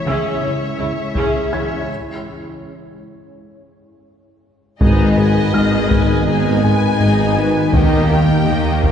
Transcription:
0.00 1.88 G#3 medium
0.00 1.84 C#4 medium
0.00 1.84 E4 medium
0.00 1.84 C#5 medium
0.00 1.84 E5 medium
0.05 0.15 C#2 medium
0.05 0.27 C#3 medium
0.05 0.14 C#3 medium
0.05 0.40 C#4 medium
0.05 0.40 G#4 medium
0.05 1.85 E5 soft
0.05 1.85 E6 soft
0.42 0.51 C#2 soft
0.42 0.50 C#3 soft
0.42 0.51 C#4 medium
0.42 0.65 C#4 medium
0.78 0.88 C#2 soft
0.78 0.87 C#3 soft
0.78 1.01 G#3 medium
0.78 0.86 C#4 soft
0.78 0.87 E4 medium
1.15 1.24 C#2 medium
1.15 1.23 C#3 medium
1.15 1.38 C#3 medium
1.15 1.50 C#4 medium
1.15 1.50 G#4 medium
1.15 taiko medium
1.52 1.60 C#2 soft
1.52 1.60 C#3 soft
1.52 1.75 E3 medium
1.52 1.61 C#4 soft
1.52 1.87 G#6 soft
4.80 5.46 G#1 medium
4.80 5.46 G#2 medium
4.80 5.03 G#2 medium
4.80 8.92 D#3 medium
4.80 5.03 G#3 loud
4.80 7.70 G#3 medium
4.80 7.69 B3 medium
4.80 5.16 B3 medium
4.80 8.92 D#4 medium
4.80 5.16 D#4 medium
4.80 5.15 G#4 medium
4.80 5.15 D#5 medium
4.80 8.92 D#5 medium
4.80 6.24 D#5 loud
4.80 taiko loud
5.17 5.40 G#2 medium
5.17 5.55 G#3 medium
5.17 5.53 B3 medium
5.17 5.40 G#4 medium
5.17 5.54 B4 medium
5.17 5.54 G#5 medium
5.53 6.19 G#1 medium
5.53 6.19 G#2 medium
5.53 5.77 G#3 medium
5.53 5.90 B3 medium
5.53 5.76 D#4 medium
5.53 5.91 D#4 medium
5.53 5.91 G#4 medium
5.53 5.91 D#5 medium
5.53 7.70 F6 medium
5.90 6.13 G#2 loud
5.90 6.13 G#3 loud
5.90 6.28 G#3 medium
5.90 6.26 B3 medium
5.90 6.27 B4 medium
5.90 6.27 G#5 medium
5.90 taiko medium
6.26 6.92 G#1 medium
6.26 6.50 G#2 medium
6.26 6.92 G#2 medium
6.26 6.62 B3 medium
6.26 6.62 D#4 medium
6.26 6.61 G#4 medium
6.26 6.50 G#4 medium
6.26 6.61 D#5 medium
6.26 7.74 G#5 loud
6.63 6.86 G#2 medium
6.63 7.01 G#3 medium
6.63 7.00 B3 medium
6.63 6.87 G#4 medium
6.63 7.00 B4 medium
6.63 7.00 G#5 medium
7.00 7.65 G#1 medium
7.00 7.66 G#1 medium
7.00 7.23 G#2 medium
7.00 7.65 G#2 medium
7.00 7.23 G#3 medium
7.00 7.37 B3 medium
7.00 7.38 D#4 medium
7.00 7.37 G#4 medium
7.00 7.37 D#5 medium
7.36 7.74 G#3 medium
7.36 7.60 G#3 medium
7.36 7.74 B3 medium
7.36 7.60 D#4 medium
7.36 7.73 B4 medium
7.36 7.73 G#5 medium
7.73 7.96 D#2 medium
7.73 8.39 D#2 medium
7.73 7.96 D#3 loud
7.73 8.39 D#3 medium
7.73 8.92 A#3 medium
7.73 8.08 A#3 medium
7.73 8.92 A#3 medium
7.73 8.08 D#4 medium
7.73 8.08 G4 medium
7.73 8.08 D#5 medium
7.73 8.92 G5 medium
7.73 taiko loud
8.10 8.33 D#2 medium
8.10 8.48 G3 medium
8.10 8.33 D#4 medium
8.10 8.48 G4 medium
8.10 8.47 A#4 medium
8.10 8.47 G5 medium
8.46 8.92 D#2 medium
8.46 8.92 D#3 medium
8.46 8.69 D#3 medium
8.46 8.69 A#3 medium
8.46 8.84 A#3 medium
8.46 8.84 D#4 medium
8.46 8.83 G4 medium
8.46 8.83 D#5 medium
8.83 8.92 D#2 medium
8.83 8.92 D#3 loud
8.83 8.92 G3 medium
8.83 8.92 G4 medium
8.83 8.92 A#4 medium
8.83 8.92 G5 medium
8.83 taiko medium

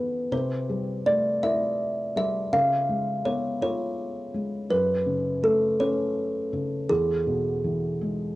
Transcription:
0.00 0.28 E3 medium
0.00 0.34 B3 soft
0.00 0.28 E4 medium
0.00 0.29 G#4 soft
0.32 2.49 C3 medium
0.32 1.03 C5 medium
0.69 2.13 G3 soft
1.06 2.49 A3 soft
1.06 1.23 D5 medium
1.43 2.50 E4 soft
1.43 2.16 E5 loud
2.16 2.52 G3 soft
2.16 2.55 E5 medium
2.53 4.66 C#3 medium
2.53 3.28 F5 loud
2.89 4.30 G#3 medium
3.25 4.66 B3 medium
3.25 3.61 C#5 medium
3.62 4.67 F4 soft
3.62 4.74 C#5 medium
4.34 4.69 G#3 soft
4.70 6.85 F#2 medium
4.70 5.45 B4 medium
5.06 6.48 C#3 medium
5.43 6.85 A3 medium
5.43 5.81 A4 medium
5.79 6.86 C#4 medium
5.79 6.49 C#5 medium
6.53 6.88 C#3 soft
6.89 8.36 E2 medium
6.89 8.35 G#4 medium
7.27 8.36 B2 medium
7.64 8.36 E3 soft
8.01 8.36 G#3 soft

